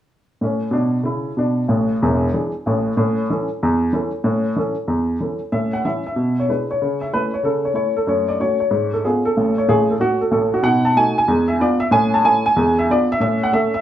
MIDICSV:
0, 0, Header, 1, 2, 480
1, 0, Start_track
1, 0, Key_signature, 3, "major"
1, 0, Tempo, 319659
1, 608, Time_signature, 4, 2, 24, 8
1, 20740, End_track
2, 0, Start_track
2, 0, Title_t, "Upright piano"
2, 0, Program_c, 0, 0
2, 618, Note_on_c, 0, 45, 52
2, 653, Note_on_c, 0, 61, 51
2, 869, Control_c, 0, 64, 127
2, 999, Note_off_c, 0, 45, 0
2, 1020, Note_off_c, 0, 61, 0
2, 1064, Note_on_c, 0, 47, 61
2, 1095, Note_on_c, 0, 62, 62
2, 1103, Control_c, 0, 64, 0
2, 1459, Note_off_c, 0, 47, 0
2, 1477, Note_off_c, 0, 62, 0
2, 1550, Note_on_c, 0, 49, 54
2, 1581, Note_on_c, 0, 64, 56
2, 1943, Note_off_c, 0, 49, 0
2, 1962, Note_off_c, 0, 64, 0
2, 2054, Note_on_c, 0, 47, 51
2, 2077, Note_on_c, 0, 62, 59
2, 2437, Note_off_c, 0, 47, 0
2, 2452, Note_off_c, 0, 62, 0
2, 2526, Note_on_c, 0, 33, 60
2, 2535, Note_on_c, 0, 45, 54
2, 2794, Control_c, 0, 64, 127
2, 2913, Note_off_c, 0, 33, 0
2, 2918, Note_off_c, 0, 45, 0
2, 3027, Control_c, 0, 64, 0
2, 3040, Note_on_c, 0, 40, 65
2, 3043, Note_on_c, 0, 28, 67
2, 3414, Note_off_c, 0, 40, 0
2, 3415, Note_off_c, 0, 28, 0
2, 3506, Note_on_c, 0, 62, 42
2, 3510, Note_on_c, 0, 68, 43
2, 3512, Note_on_c, 0, 52, 43
2, 3767, Note_off_c, 0, 62, 0
2, 3770, Note_off_c, 0, 68, 0
2, 3771, Note_off_c, 0, 52, 0
2, 3997, Note_on_c, 0, 33, 61
2, 4007, Note_on_c, 0, 45, 61
2, 4372, Note_off_c, 0, 33, 0
2, 4378, Note_off_c, 0, 45, 0
2, 4461, Note_on_c, 0, 45, 74
2, 4492, Note_on_c, 0, 61, 49
2, 4717, Control_c, 0, 64, 127
2, 4746, Note_off_c, 0, 61, 0
2, 4866, Note_off_c, 0, 45, 0
2, 4948, Control_c, 0, 64, 0
2, 4958, Note_on_c, 0, 52, 46
2, 4960, Note_on_c, 0, 69, 50
2, 4964, Note_on_c, 0, 61, 47
2, 5216, Note_off_c, 0, 52, 0
2, 5217, Note_off_c, 0, 69, 0
2, 5220, Note_off_c, 0, 61, 0
2, 5448, Note_on_c, 0, 40, 73
2, 5842, Note_off_c, 0, 40, 0
2, 5898, Note_on_c, 0, 52, 47
2, 5905, Note_on_c, 0, 61, 41
2, 5915, Note_on_c, 0, 69, 45
2, 6161, Note_off_c, 0, 52, 0
2, 6166, Note_off_c, 0, 61, 0
2, 6174, Note_off_c, 0, 69, 0
2, 6366, Note_on_c, 0, 45, 67
2, 6391, Note_on_c, 0, 61, 42
2, 6635, Control_c, 0, 64, 127
2, 6650, Note_off_c, 0, 61, 0
2, 6778, Note_off_c, 0, 45, 0
2, 6852, Note_on_c, 0, 52, 38
2, 6858, Note_on_c, 0, 61, 48
2, 6868, Control_c, 0, 64, 0
2, 6875, Note_on_c, 0, 69, 49
2, 7117, Note_off_c, 0, 52, 0
2, 7121, Note_off_c, 0, 61, 0
2, 7133, Note_off_c, 0, 69, 0
2, 7324, Note_on_c, 0, 40, 57
2, 7736, Note_off_c, 0, 40, 0
2, 7813, Note_on_c, 0, 52, 34
2, 7826, Note_on_c, 0, 61, 30
2, 7835, Note_on_c, 0, 69, 35
2, 8077, Note_off_c, 0, 52, 0
2, 8087, Note_off_c, 0, 61, 0
2, 8093, Note_off_c, 0, 69, 0
2, 8291, Note_on_c, 0, 45, 51
2, 8293, Note_on_c, 0, 76, 65
2, 8322, Note_on_c, 0, 61, 34
2, 8537, Control_c, 0, 64, 127
2, 8578, Note_off_c, 0, 61, 0
2, 8606, Note_off_c, 0, 76, 0
2, 8609, Note_on_c, 0, 78, 60
2, 8700, Note_off_c, 0, 45, 0
2, 8775, Note_off_c, 0, 78, 0
2, 8782, Note_on_c, 0, 52, 34
2, 8786, Note_on_c, 0, 76, 69
2, 8789, Note_on_c, 0, 61, 35
2, 8797, Control_c, 0, 64, 0
2, 8797, Note_on_c, 0, 64, 36
2, 9044, Note_off_c, 0, 52, 0
2, 9049, Note_off_c, 0, 61, 0
2, 9055, Note_off_c, 0, 64, 0
2, 9086, Note_off_c, 0, 76, 0
2, 9108, Note_on_c, 0, 76, 59
2, 9251, Note_on_c, 0, 47, 54
2, 9502, Control_c, 0, 64, 127
2, 9577, Note_off_c, 0, 76, 0
2, 9603, Note_on_c, 0, 73, 53
2, 9659, Note_off_c, 0, 47, 0
2, 9740, Note_on_c, 0, 56, 34
2, 9752, Note_off_c, 0, 73, 0
2, 9752, Note_on_c, 0, 64, 38
2, 9753, Control_c, 0, 64, 0
2, 9753, Note_on_c, 0, 62, 31
2, 9758, Note_on_c, 0, 71, 50
2, 10002, Note_off_c, 0, 56, 0
2, 10010, Note_off_c, 0, 64, 0
2, 10011, Note_off_c, 0, 62, 0
2, 10058, Note_off_c, 0, 71, 0
2, 10071, Note_on_c, 0, 73, 61
2, 10236, Note_on_c, 0, 49, 58
2, 10469, Control_c, 0, 64, 127
2, 10530, Note_on_c, 0, 76, 60
2, 10538, Note_off_c, 0, 73, 0
2, 10634, Note_off_c, 0, 49, 0
2, 10695, Note_off_c, 0, 76, 0
2, 10708, Note_on_c, 0, 57, 36
2, 10708, Note_on_c, 0, 61, 33
2, 10708, Note_on_c, 0, 64, 38
2, 10709, Control_c, 0, 64, 0
2, 10715, Note_on_c, 0, 71, 73
2, 10967, Note_off_c, 0, 61, 0
2, 10967, Note_off_c, 0, 64, 0
2, 10968, Note_off_c, 0, 57, 0
2, 11016, Note_off_c, 0, 71, 0
2, 11019, Note_on_c, 0, 73, 53
2, 11162, Note_on_c, 0, 49, 51
2, 11179, Note_off_c, 0, 73, 0
2, 11181, Note_on_c, 0, 69, 64
2, 11485, Note_on_c, 0, 73, 54
2, 11489, Note_off_c, 0, 69, 0
2, 11574, Note_off_c, 0, 49, 0
2, 11617, Note_on_c, 0, 57, 31
2, 11623, Note_off_c, 0, 73, 0
2, 11631, Note_on_c, 0, 61, 34
2, 11632, Note_on_c, 0, 64, 38
2, 11645, Note_on_c, 0, 73, 59
2, 11891, Note_off_c, 0, 57, 0
2, 11900, Note_off_c, 0, 61, 0
2, 11902, Note_off_c, 0, 64, 0
2, 11961, Note_off_c, 0, 73, 0
2, 11961, Note_on_c, 0, 69, 65
2, 12116, Note_on_c, 0, 42, 58
2, 12130, Note_off_c, 0, 69, 0
2, 12140, Note_on_c, 0, 73, 67
2, 12151, Note_on_c, 0, 57, 36
2, 12395, Control_c, 0, 64, 127
2, 12409, Note_off_c, 0, 57, 0
2, 12440, Note_on_c, 0, 74, 62
2, 12448, Note_off_c, 0, 73, 0
2, 12531, Note_off_c, 0, 42, 0
2, 12609, Note_off_c, 0, 74, 0
2, 12610, Note_on_c, 0, 57, 32
2, 12617, Note_on_c, 0, 61, 35
2, 12622, Note_on_c, 0, 66, 35
2, 12623, Control_c, 0, 64, 0
2, 12623, Note_on_c, 0, 73, 66
2, 12874, Note_off_c, 0, 57, 0
2, 12879, Note_off_c, 0, 61, 0
2, 12883, Note_off_c, 0, 66, 0
2, 12892, Note_off_c, 0, 73, 0
2, 12915, Note_on_c, 0, 73, 57
2, 13076, Note_on_c, 0, 44, 61
2, 13341, Control_c, 0, 64, 127
2, 13399, Note_off_c, 0, 73, 0
2, 13409, Note_on_c, 0, 69, 55
2, 13490, Note_off_c, 0, 44, 0
2, 13574, Note_off_c, 0, 69, 0
2, 13586, Note_on_c, 0, 68, 58
2, 13587, Note_on_c, 0, 59, 31
2, 13591, Control_c, 0, 64, 0
2, 13591, Note_on_c, 0, 61, 32
2, 13597, Note_on_c, 0, 65, 37
2, 13846, Note_off_c, 0, 59, 0
2, 13849, Note_off_c, 0, 61, 0
2, 13853, Note_off_c, 0, 65, 0
2, 13891, Note_off_c, 0, 68, 0
2, 13894, Note_on_c, 0, 69, 75
2, 14068, Note_on_c, 0, 33, 53
2, 14068, Note_on_c, 0, 45, 53
2, 14297, Control_c, 0, 64, 127
2, 14369, Note_off_c, 0, 69, 0
2, 14385, Note_on_c, 0, 73, 64
2, 14445, Note_off_c, 0, 33, 0
2, 14445, Note_off_c, 0, 45, 0
2, 14538, Note_on_c, 0, 45, 53
2, 14541, Note_off_c, 0, 73, 0
2, 14545, Note_on_c, 0, 33, 63
2, 14548, Note_on_c, 0, 68, 88
2, 14552, Control_c, 0, 64, 0
2, 14852, Note_off_c, 0, 68, 0
2, 14870, Note_on_c, 0, 69, 55
2, 14919, Note_off_c, 0, 45, 0
2, 14923, Note_off_c, 0, 33, 0
2, 15011, Note_on_c, 0, 57, 38
2, 15013, Note_on_c, 0, 61, 34
2, 15024, Note_off_c, 0, 69, 0
2, 15028, Note_on_c, 0, 66, 83
2, 15275, Note_off_c, 0, 57, 0
2, 15277, Note_off_c, 0, 61, 0
2, 15332, Note_off_c, 0, 66, 0
2, 15334, Note_on_c, 0, 69, 61
2, 15477, Note_off_c, 0, 69, 0
2, 15481, Note_on_c, 0, 33, 58
2, 15493, Note_on_c, 0, 45, 57
2, 15500, Note_on_c, 0, 69, 69
2, 15807, Note_off_c, 0, 69, 0
2, 15823, Note_on_c, 0, 66, 74
2, 15869, Note_off_c, 0, 33, 0
2, 15876, Note_off_c, 0, 45, 0
2, 15956, Note_on_c, 0, 47, 65
2, 15970, Note_on_c, 0, 78, 88
2, 15980, Note_off_c, 0, 66, 0
2, 15994, Note_on_c, 0, 63, 41
2, 16230, Control_c, 0, 64, 127
2, 16252, Note_off_c, 0, 63, 0
2, 16283, Note_off_c, 0, 78, 0
2, 16291, Note_on_c, 0, 81, 70
2, 16370, Note_off_c, 0, 47, 0
2, 16454, Note_off_c, 0, 81, 0
2, 16463, Note_on_c, 0, 57, 44
2, 16464, Control_c, 0, 64, 0
2, 16468, Note_on_c, 0, 66, 49
2, 16469, Note_on_c, 0, 63, 47
2, 16472, Note_on_c, 0, 80, 86
2, 16723, Note_off_c, 0, 57, 0
2, 16727, Note_off_c, 0, 66, 0
2, 16728, Note_off_c, 0, 63, 0
2, 16765, Note_off_c, 0, 80, 0
2, 16788, Note_on_c, 0, 80, 77
2, 16937, Note_on_c, 0, 40, 69
2, 16966, Note_on_c, 0, 56, 48
2, 17177, Control_c, 0, 64, 127
2, 17220, Note_off_c, 0, 56, 0
2, 17236, Note_on_c, 0, 76, 70
2, 17255, Note_off_c, 0, 80, 0
2, 17342, Note_off_c, 0, 40, 0
2, 17407, Note_off_c, 0, 76, 0
2, 17417, Note_on_c, 0, 59, 46
2, 17431, Note_on_c, 0, 65, 49
2, 17432, Control_c, 0, 64, 0
2, 17433, Note_on_c, 0, 62, 42
2, 17437, Note_on_c, 0, 74, 79
2, 17679, Note_off_c, 0, 59, 0
2, 17690, Note_off_c, 0, 65, 0
2, 17691, Note_off_c, 0, 62, 0
2, 17718, Note_on_c, 0, 76, 84
2, 17736, Note_off_c, 0, 74, 0
2, 17885, Note_on_c, 0, 45, 74
2, 17888, Note_off_c, 0, 76, 0
2, 17900, Note_on_c, 0, 80, 93
2, 17915, Note_on_c, 0, 61, 49
2, 18135, Control_c, 0, 64, 127
2, 18172, Note_off_c, 0, 61, 0
2, 18208, Note_off_c, 0, 80, 0
2, 18228, Note_on_c, 0, 81, 73
2, 18295, Note_off_c, 0, 45, 0
2, 18382, Note_on_c, 0, 57, 44
2, 18383, Note_off_c, 0, 81, 0
2, 18391, Note_on_c, 0, 64, 51
2, 18393, Control_c, 0, 64, 0
2, 18394, Note_on_c, 0, 80, 90
2, 18396, Note_on_c, 0, 61, 45
2, 18643, Note_off_c, 0, 57, 0
2, 18649, Note_off_c, 0, 64, 0
2, 18653, Note_off_c, 0, 61, 0
2, 18685, Note_off_c, 0, 80, 0
2, 18708, Note_on_c, 0, 80, 81
2, 18867, Note_on_c, 0, 40, 69
2, 18893, Note_on_c, 0, 56, 52
2, 19101, Control_c, 0, 64, 127
2, 19146, Note_off_c, 0, 56, 0
2, 19175, Note_off_c, 0, 80, 0
2, 19201, Note_on_c, 0, 76, 77
2, 19268, Note_off_c, 0, 40, 0
2, 19349, Note_off_c, 0, 76, 0
2, 19350, Control_c, 0, 64, 0
2, 19369, Note_on_c, 0, 62, 36
2, 19377, Note_on_c, 0, 65, 42
2, 19379, Note_on_c, 0, 59, 44
2, 19389, Note_on_c, 0, 74, 81
2, 19622, Note_off_c, 0, 62, 0
2, 19628, Note_off_c, 0, 65, 0
2, 19629, Note_off_c, 0, 59, 0
2, 19672, Note_off_c, 0, 74, 0
2, 19700, Note_on_c, 0, 76, 91
2, 19818, Note_off_c, 0, 76, 0
2, 19824, Note_on_c, 0, 45, 61
2, 19840, Note_on_c, 0, 76, 84
2, 19860, Note_on_c, 0, 61, 48
2, 20054, Control_c, 0, 64, 127
2, 20110, Note_off_c, 0, 61, 0
2, 20138, Note_off_c, 0, 76, 0
2, 20172, Note_on_c, 0, 78, 76
2, 20226, Note_off_c, 0, 45, 0
2, 20312, Note_on_c, 0, 61, 45
2, 20313, Note_on_c, 0, 57, 49
2, 20315, Note_off_c, 0, 78, 0
2, 20315, Control_c, 0, 64, 0
2, 20319, Note_on_c, 0, 69, 50
2, 20323, Note_on_c, 0, 76, 85
2, 20570, Note_off_c, 0, 61, 0
2, 20571, Note_off_c, 0, 57, 0
2, 20575, Note_off_c, 0, 69, 0
2, 20612, Note_off_c, 0, 76, 0
2, 20634, Note_on_c, 0, 76, 80
2, 20740, Note_off_c, 0, 76, 0
2, 20740, End_track
0, 0, End_of_file